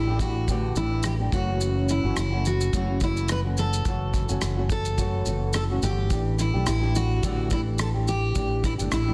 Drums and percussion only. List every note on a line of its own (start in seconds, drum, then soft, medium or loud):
0.19 kick medium
0.19 shaker medium
0.48 kick medium
0.48 shaker medium
0.76 shaker soft
1.03 cross-stick loud
1.03 shaker medium
1.32 kick loud
1.32 shaker soft
1.61 shaker medium
1.89 shaker soft
2.16 cross-stick medium
2.16 shaker medium
2.45 shaker medium
2.61 shaker soft
2.73 kick medium
2.73 shaker medium
3.00 kick medium
3.00 shaker soft
3.17 shaker soft
3.28 cross-stick loud
3.28 shaker medium
3.57 shaker soft
3.73 shaker medium
3.85 kick loud
3.85 shaker medium
4.14 kick medium
4.14 shaker soft
4.29 shaker soft
4.41 cross-stick medium
4.41 shaker medium
4.69 kick loud
4.69 shaker medium
4.85 shaker soft
4.98 kick medium
4.98 shaker medium
5.26 shaker soft
5.53 cross-stick loud
5.53 shaker medium
5.82 shaker soft
6.10 kick medium
6.10 shaker medium
6.39 cross-stick soft
6.39 shaker soft
6.67 cross-stick loud
6.67 shaker medium
6.95 shaker medium
7.23 kick medium
7.23 shaker medium
7.50 kick medium
7.50 shaker soft
7.79 cross-stick loud
7.79 shaker medium
8.08 shaker soft
8.35 kick loud
8.35 shaker medium
8.64 kick medium
8.64 shaker soft
8.79 shaker soft
8.92 cross-stick loud
8.92 shaker medium